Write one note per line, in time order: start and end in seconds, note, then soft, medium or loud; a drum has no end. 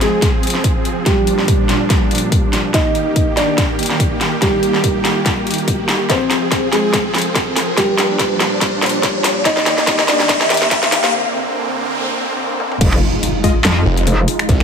0.00 2.71 F3 medium
0.00 0.25 G#3 medium
0.00 1.04 C4 medium
0.00 1.04 G#4 medium
0.00 0.25 G#4 medium
0.00 snare soft
0.00 closed hi-hat medium
0.00 riser medium
0.22 kick loud
0.22 snare medium
0.22 closed hi-hat medium
0.43 closed hi-hat soft
0.47 closed hi-hat medium
0.50 closed hi-hat medium
0.55 snare soft
0.64 kick medium
0.64 closed hi-hat medium
0.85 closed hi-hat medium
1.06 2.72 A#2 medium
1.06 2.66 G3 medium
1.06 2.72 D4 medium
1.06 2.66 G4 medium
1.06 kick medium
1.06 snare medium
1.06 closed hi-hat medium
1.27 closed hi-hat medium
1.39 snare soft
1.48 kick loud
1.48 closed hi-hat medium
1.69 snare medium
1.69 closed hi-hat medium
1.90 kick loud
1.90 snare medium
1.90 closed hi-hat medium
2.11 closed hi-hat soft
2.15 closed hi-hat medium
2.18 closed hi-hat medium
2.32 kick loud
2.32 closed hi-hat medium
2.53 snare medium
2.53 closed hi-hat medium
2.74 6.06 D#3 medium
2.74 6.06 A#3 medium
2.74 3.29 D#4 medium
2.74 6.06 G4 medium
2.74 3.29 D#5 loud
2.74 kick medium
2.74 snare medium
2.74 closed hi-hat medium
2.95 closed hi-hat medium
3.16 kick loud
3.16 closed hi-hat medium
3.37 3.60 D4 medium
3.37 3.60 D5 medium
3.37 snare medium
3.37 closed hi-hat medium
3.58 kick loud
3.58 snare medium
3.58 closed hi-hat medium
3.79 closed hi-hat soft
3.83 closed hi-hat medium
3.86 closed hi-hat medium
3.90 snare medium
4.00 kick loud
4.00 closed hi-hat medium
4.21 snare medium
4.21 closed hi-hat soft
4.42 6.02 G3 medium
4.42 6.02 G4 medium
4.42 kick loud
4.42 snare medium
4.42 closed hi-hat medium
4.63 closed hi-hat soft
4.74 snare medium
4.84 kick medium
4.84 closed hi-hat medium
5.05 snare medium
5.05 closed hi-hat soft
5.26 kick loud
5.26 snare medium
5.26 closed hi-hat medium
5.47 closed hi-hat soft
5.51 closed hi-hat medium
5.54 closed hi-hat medium
5.58 closed hi-hat soft
5.68 kick loud
5.68 closed hi-hat medium
5.89 snare medium
5.89 closed hi-hat soft
6.10 9.42 F3 medium
6.10 6.65 C4 medium
6.10 7.76 C4 medium
6.10 7.76 G#4 medium
6.10 6.65 C5 loud
6.10 kick loud
6.10 snare medium
6.10 closed hi-hat medium
6.31 snare medium
6.31 closed hi-hat medium
6.52 kick medium
6.52 snare medium
6.52 closed hi-hat medium
6.73 6.96 G#3 medium
6.73 6.96 G#4 medium
6.73 snare medium
6.73 closed hi-hat medium
6.94 kick loud
6.94 snare medium
6.94 closed hi-hat medium
7.15 snare medium
7.15 closed hi-hat soft
7.18 closed hi-hat medium
7.22 closed hi-hat medium
7.36 kick medium
7.36 snare medium
7.36 closed hi-hat medium
7.56 snare medium
7.56 open hi-hat medium
7.77 9.44 A#2 medium
7.77 9.38 G3 medium
7.77 9.44 D4 medium
7.77 9.38 G4 loud
7.77 kick loud
7.77 snare medium
7.77 closed hi-hat medium
7.98 snare medium
7.98 closed hi-hat medium
8.19 kick loud
8.19 snare medium
8.19 closed hi-hat medium
8.40 snare medium
8.40 closed hi-hat medium
8.61 kick loud
8.61 snare medium
8.61 closed hi-hat medium
8.82 snare medium
8.82 closed hi-hat soft
8.86 closed hi-hat medium
8.89 closed hi-hat medium
9.03 kick loud
9.03 snare medium
9.03 closed hi-hat medium
9.24 snare medium
9.24 open hi-hat medium
9.45 11.11 D#3 medium
9.45 12.78 A#3 medium
9.45 10.01 D#4 medium
9.45 11.11 G4 medium
9.45 10.01 D#5 loud
9.45 kick loud
9.45 snare medium
9.45 closed hi-hat medium
9.57 snare medium
9.66 snare medium
9.66 closed hi-hat medium
9.78 snare medium
9.87 kick medium
9.87 snare medium
9.87 closed hi-hat medium
9.99 snare medium
10.08 10.32 D4 medium
10.08 10.32 D5 medium
10.08 snare loud
10.08 closed hi-hat medium
10.20 snare medium
10.29 kick loud
10.29 snare loud
10.29 closed hi-hat medium
10.41 snare medium
10.50 snare loud
10.50 closed hi-hat medium
10.54 closed hi-hat medium
10.57 closed hi-hat medium
10.62 snare medium
10.71 kick loud
10.71 snare loud
10.71 closed hi-hat medium
10.83 snare medium
10.92 snare loud
10.92 open hi-hat loud
11.04 snare medium
11.13 12.79 D3 medium
11.13 12.79 C4 medium
11.13 noise sweep medium
12.60 high tom medium
12.72 mid tom medium
12.81 13.00 F1 loud
12.81 14.64 G#3 medium
12.81 14.64 D#4 medium
12.81 14.64 F4 medium
12.81 kick loud
12.81 closed hi-hat medium
12.81 crash loud
12.81 impact medium
12.93 finger snap soft
13.23 closed hi-hat medium
13.44 13.50 G#3 medium
13.44 13.50 F4 medium
13.44 13.50 D#5 loud
13.44 kick medium
13.44 open hi-hat medium
13.65 13.84 F2 loud
13.65 snare loud
13.65 clap loud
13.65 closed hi-hat medium
13.86 14.05 F1 loud
13.97 closed hi-hat medium
14.07 14.26 F1 loud
14.07 closed hi-hat medium
14.28 open hi-hat medium
14.39 finger snap medium
14.39 closed hi-hat medium
14.49 14.64 C2 loud
14.49 kick loud
14.49 closed hi-hat medium
14.60 finger snap medium